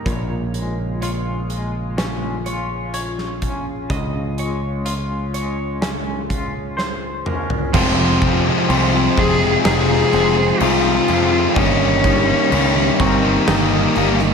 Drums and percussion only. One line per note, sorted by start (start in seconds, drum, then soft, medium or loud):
0.06 kick medium
0.06 closed hi-hat medium
0.54 closed hi-hat soft
1.02 closed hi-hat medium
1.50 closed hi-hat soft
1.98 snare medium
1.98 closed hi-hat medium
2.46 closed hi-hat soft
2.94 closed hi-hat medium
3.18 snare soft
3.42 kick medium
3.42 closed hi-hat medium
3.90 kick medium
3.90 closed hi-hat medium
4.38 closed hi-hat medium
4.86 closed hi-hat medium
5.34 closed hi-hat medium
5.82 snare loud
5.82 closed hi-hat medium
6.30 kick medium
6.30 closed hi-hat medium
6.79 snare medium
7.26 mid tom medium
7.50 floor tom medium
7.74 kick loud
7.74 crash loud
7.74 crash medium
8.22 kick medium
8.22 crash medium
8.70 crash medium
9.17 kick loud
9.17 crash medium
9.65 snare loud
9.65 crash loud
10.13 crash medium
10.60 crash loud
11.08 crash medium
11.56 kick loud
11.56 crash medium
12.04 kick medium
12.04 crash medium
12.52 crash loud
13.00 kick medium
13.00 crash medium
13.48 snare loud
13.48 crash medium
13.95 crash medium
14.19 snare soft